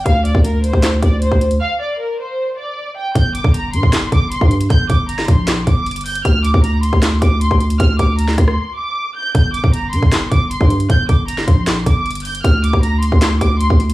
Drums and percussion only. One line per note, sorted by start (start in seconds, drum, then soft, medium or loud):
0.06 kick loud
0.06 closed hi-hat medium
0.25 closed hi-hat medium
0.35 kick loud
0.44 closed hi-hat medium
0.64 closed hi-hat medium
0.73 kick medium
0.83 snare loud
0.83 clap loud
0.83 closed hi-hat medium
1.02 kick medium
1.02 closed hi-hat medium
1.22 closed hi-hat medium
1.32 kick loud
1.41 closed hi-hat medium
1.51 closed hi-hat medium
3.15 kick loud
3.15 closed hi-hat medium
3.35 closed hi-hat medium
3.44 kick loud
3.54 closed hi-hat medium
3.73 closed hi-hat medium
3.83 kick loud
3.93 snare loud
3.93 clap loud
3.93 closed hi-hat medium
4.12 kick loud
4.12 closed hi-hat medium
4.32 closed hi-hat medium
4.41 kick loud
4.51 closed hi-hat medium
4.61 closed hi-hat medium
4.70 kick loud
4.70 closed hi-hat medium
4.90 kick medium
4.90 closed hi-hat medium
5.09 closed hi-hat medium
5.19 snare medium
5.28 kick loud
5.28 closed hi-hat medium
5.48 snare loud
5.48 clap loud
5.48 closed hi-hat medium
5.67 kick medium
5.67 closed hi-hat medium
5.86 closed hi-hat soft
5.91 closed hi-hat medium
5.96 closed hi-hat medium
6.01 closed hi-hat medium
6.06 closed hi-hat soft
6.06 open hi-hat medium
6.15 closed hi-hat medium
6.25 kick loud
6.25 closed hi-hat medium
6.44 closed hi-hat medium
6.54 kick loud
6.64 closed hi-hat medium
6.83 closed hi-hat medium
6.93 kick loud
7.02 snare loud
7.02 clap loud
7.02 closed hi-hat medium
7.22 kick medium
7.22 closed hi-hat medium
7.41 closed hi-hat medium
7.51 kick loud
7.61 closed hi-hat medium
7.70 closed hi-hat medium
7.80 kick loud
7.80 closed hi-hat medium
7.99 kick medium
7.99 closed hi-hat medium
8.19 closed hi-hat medium
8.28 snare medium
8.38 kick loud
8.38 cross-stick medium
8.38 closed hi-hat medium
8.48 cross-stick loud
9.35 kick loud
9.35 closed hi-hat medium
9.54 closed hi-hat medium
9.64 kick loud
9.74 closed hi-hat medium
9.93 closed hi-hat medium
10.03 kick medium
10.12 snare loud
10.12 clap loud
10.12 closed hi-hat medium
10.32 kick medium
10.32 closed hi-hat medium
10.51 closed hi-hat medium
10.61 kick loud
10.70 closed hi-hat medium
10.80 closed hi-hat medium
10.90 kick loud
10.90 closed hi-hat medium
11.09 kick medium
11.09 closed hi-hat medium
11.28 closed hi-hat medium
11.38 snare medium
11.48 kick loud
11.48 closed hi-hat medium
11.67 snare loud
11.67 clap loud
11.67 closed hi-hat medium
11.86 kick medium
11.86 closed hi-hat medium
12.06 closed hi-hat soft
12.11 closed hi-hat medium
12.15 closed hi-hat medium
12.20 closed hi-hat medium
12.25 closed hi-hat soft
12.25 open hi-hat medium
12.35 closed hi-hat medium
12.44 kick loud
12.44 closed hi-hat medium
12.64 closed hi-hat medium
12.73 kick loud
12.83 closed hi-hat medium
13.03 closed hi-hat medium
13.12 kick medium
13.22 snare loud
13.22 clap loud
13.22 closed hi-hat medium
13.41 kick loud
13.41 closed hi-hat medium
13.61 closed hi-hat medium
13.70 kick loud
13.80 closed hi-hat medium
13.90 closed hi-hat medium